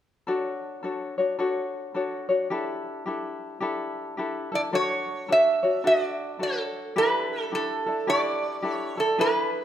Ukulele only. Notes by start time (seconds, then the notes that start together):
0.27 D4 F#4 A4 C#5
0.83 D4 F#4 A4 C#5
1.18 D4 F#4 C#5
1.39 D4 F#4 A4 C#5
1.94 D4 F#4 A4 C#5
2.29 D4 F#4 C#5
2.50 D4 E4 G4 A4
3.06 D4 E4 G4 A4
3.60 D4 E4 G4 A4
4.17 D4 E4 G4 A4
4.52 D4 E4 A4
4.73 D4 F#4 A4 C#5
5.28 D4 F#4 A4 C#5
5.63 D4 F#4 C#5
5.84 D4 F#4 A4
6.39 D4 F#4 A4 C#5
6.96 D4 E4 G4 A4
7.52 D4 E4 G4 A4
7.86 D4 E4 A4
8.07 D4 E4 G4 A4
8.62 D4 E4 G4 A4
8.97 D4 E4 A4
9.18 D4 E4 G#4 B4